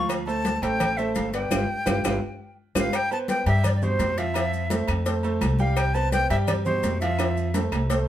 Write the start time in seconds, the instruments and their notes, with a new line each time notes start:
Already playing: upright bass D2, grand piano F3 F4 F5
0.09 cowbell, high conga, low agogo, claves, maracas
0.26 grand piano A3 A4 C5, flute A5, high conga, low agogo, maracas
0.45 cowbell, high conga, maracas
0.56 flute A5
0.62 upright bass A1, grand piano A3 A4 C5, flute G5, cowbell, high conga, low agogo, maracas
0.80 cowbell, high conga, low conga, low agogo, claves, maracas
0.97 grand piano A3 A4 C5, flute E5, high conga, maracas
1.15 upright bass G1, flute F5, cowbell, high conga, low timbale, low agogo, maracas
1.33 grand piano B3 B4 D5, flute G5, cowbell, maracas
1.51 upright bass G1, grand piano F4 G4 B4, cowbell, high conga, high timbale, claves, maracas
1.86 upright bass G1, grand piano F4 G4 B4, cowbell, high conga, high timbale, claves, maracas
2.04 upright bass G1, grand piano F4 G4 B4, cowbell, high conga, high timbale, claves, maracas
2.75 upright bass G1, grand piano F4 G4 B4, flute F5, cowbell, high conga, high timbale, claves, maracas
2.93 flute G5, cowbell, high conga, low agogo, claves, maracas
3.11 grand piano B3 B4 C5, flute A5, high conga, low agogo, maracas
3.28 grand piano B3 B4 C5, flute G5, cowbell, high conga, maracas
3.46 upright bass G2, grand piano G3 G4 G5, flute E5, cowbell, high conga, low agogo, maracas
3.64 flute D5, cowbell, high conga, low conga, low agogo, claves, maracas
3.76 flute D5
3.82 grand piano B2 G4 C5, flute C5, high conga, low conga, maracas
3.99 upright bass F2, cowbell, high conga, low timbale, low agogo, maracas
4.17 grand piano F3 F4 F5, flute E5, cowbell, high conga, maracas
4.34 grand piano F3 F4 E5, cowbell, high conga, low agogo, claves, maracas
4.53 high conga, maracas
4.70 grand piano A3 A4 C5, cowbell, high conga, low agogo, maracas
4.88 upright bass F2, cowbell, high conga, low agogo, claves, maracas
5.06 grand piano A3 A4 C5, cowbell, high conga, maracas
5.23 grand piano A3 A4 C5, high conga, low agogo, maracas
5.41 upright bass C2, cowbell, high conga, low timbale, low agogo, claves, maracas
5.59 grand piano G3 G4 G5, flute F5, high conga, maracas
5.77 flute G5, cowbell, high conga, low agogo, claves, maracas
5.94 grand piano B3 B4 C5, flute A5, high conga, low agogo, maracas
6.12 grand piano B3 B4 C5, flute G5, cowbell, high conga, maracas
6.30 upright bass G2, grand piano G3 G4 G5, flute E5, cowbell, high conga, low agogo, maracas
6.47 flute D5, cowbell, high conga, low conga, low agogo, claves, maracas
6.65 grand piano B2 G4 C5, flute C5, high conga, low conga, maracas
6.83 upright bass F2, cowbell, high conga, low timbale, low agogo, maracas
7.00 grand piano F3 F4 F5, flute E5, cowbell, high conga, maracas
7.19 grand piano F3 F4 E5, cowbell, high conga, high timbale, low agogo, claves, maracas
7.36 high conga, maracas
7.54 grand piano A3 A4 C5, cowbell, high conga, high timbale, low agogo, maracas
7.72 upright bass C2, cowbell, high conga, low timbale, low agogo, claves, maracas
7.90 grand piano A3 A4 C5, cowbell, high conga, low timbale, maracas